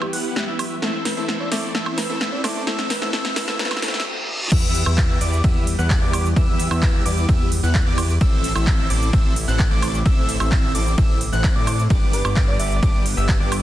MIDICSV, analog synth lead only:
0, 0, Header, 1, 2, 480
1, 0, Start_track
1, 0, Tempo, 461538
1, 858, Time_signature, 4, 2, 24, 8
1, 14167, End_track
2, 0, Start_track
2, 0, Title_t, "Analog synth lead"
2, 0, Program_c, 0, 81
2, 0, Note_on_c, 0, 88, 85
2, 109, Note_off_c, 0, 88, 0
2, 138, Note_on_c, 0, 90, 105
2, 469, Note_off_c, 0, 90, 0
2, 496, Note_on_c, 0, 88, 85
2, 778, Note_off_c, 0, 88, 0
2, 856, Note_on_c, 0, 88, 89
2, 1188, Note_off_c, 0, 88, 0
2, 1217, Note_on_c, 0, 88, 94
2, 1549, Note_off_c, 0, 88, 0
2, 1577, Note_on_c, 0, 86, 86
2, 1788, Note_off_c, 0, 86, 0
2, 1817, Note_on_c, 0, 88, 94
2, 2148, Note_off_c, 0, 88, 0
2, 2178, Note_on_c, 0, 88, 96
2, 2509, Note_off_c, 0, 88, 0
2, 2537, Note_on_c, 0, 86, 85
2, 2748, Note_off_c, 0, 86, 0
2, 2777, Note_on_c, 0, 88, 97
2, 3108, Note_off_c, 0, 88, 0
2, 3136, Note_on_c, 0, 88, 98
2, 3238, Note_off_c, 0, 88, 0
2, 3257, Note_on_c, 0, 88, 99
2, 3589, Note_off_c, 0, 88, 0
2, 3616, Note_on_c, 0, 88, 103
2, 3718, Note_off_c, 0, 88, 0
2, 3737, Note_on_c, 0, 88, 98
2, 3958, Note_off_c, 0, 88, 0
2, 3977, Note_on_c, 0, 88, 93
2, 4198, Note_off_c, 0, 88, 0
2, 4697, Note_on_c, 0, 88, 99
2, 5028, Note_off_c, 0, 88, 0
2, 5057, Note_on_c, 0, 88, 101
2, 5388, Note_off_c, 0, 88, 0
2, 5418, Note_on_c, 0, 86, 92
2, 5629, Note_off_c, 0, 86, 0
2, 5657, Note_on_c, 0, 88, 87
2, 5869, Note_off_c, 0, 88, 0
2, 6017, Note_on_c, 0, 90, 102
2, 6228, Note_off_c, 0, 90, 0
2, 6257, Note_on_c, 0, 86, 101
2, 6538, Note_off_c, 0, 86, 0
2, 6617, Note_on_c, 0, 88, 99
2, 6949, Note_off_c, 0, 88, 0
2, 6978, Note_on_c, 0, 88, 106
2, 7309, Note_off_c, 0, 88, 0
2, 7337, Note_on_c, 0, 86, 88
2, 7549, Note_off_c, 0, 86, 0
2, 7577, Note_on_c, 0, 88, 86
2, 7789, Note_off_c, 0, 88, 0
2, 7938, Note_on_c, 0, 90, 98
2, 8149, Note_off_c, 0, 90, 0
2, 8178, Note_on_c, 0, 86, 97
2, 8459, Note_off_c, 0, 86, 0
2, 8538, Note_on_c, 0, 88, 96
2, 8869, Note_off_c, 0, 88, 0
2, 8898, Note_on_c, 0, 88, 102
2, 9229, Note_off_c, 0, 88, 0
2, 9257, Note_on_c, 0, 86, 92
2, 9469, Note_off_c, 0, 86, 0
2, 9499, Note_on_c, 0, 88, 89
2, 9709, Note_off_c, 0, 88, 0
2, 9858, Note_on_c, 0, 90, 103
2, 10069, Note_off_c, 0, 90, 0
2, 10098, Note_on_c, 0, 86, 98
2, 10379, Note_off_c, 0, 86, 0
2, 10458, Note_on_c, 0, 88, 99
2, 10789, Note_off_c, 0, 88, 0
2, 10818, Note_on_c, 0, 88, 104
2, 11149, Note_off_c, 0, 88, 0
2, 11178, Note_on_c, 0, 86, 87
2, 11389, Note_off_c, 0, 86, 0
2, 11418, Note_on_c, 0, 88, 89
2, 11629, Note_off_c, 0, 88, 0
2, 11779, Note_on_c, 0, 90, 103
2, 11989, Note_off_c, 0, 90, 0
2, 12019, Note_on_c, 0, 86, 98
2, 12299, Note_off_c, 0, 86, 0
2, 12379, Note_on_c, 0, 86, 98
2, 12709, Note_off_c, 0, 86, 0
2, 12738, Note_on_c, 0, 86, 101
2, 13069, Note_off_c, 0, 86, 0
2, 13098, Note_on_c, 0, 86, 91
2, 13309, Note_off_c, 0, 86, 0
2, 13339, Note_on_c, 0, 86, 91
2, 13549, Note_off_c, 0, 86, 0
2, 13698, Note_on_c, 0, 88, 103
2, 13909, Note_off_c, 0, 88, 0
2, 13938, Note_on_c, 0, 86, 98
2, 14167, Note_off_c, 0, 86, 0
2, 14167, End_track
0, 0, End_of_file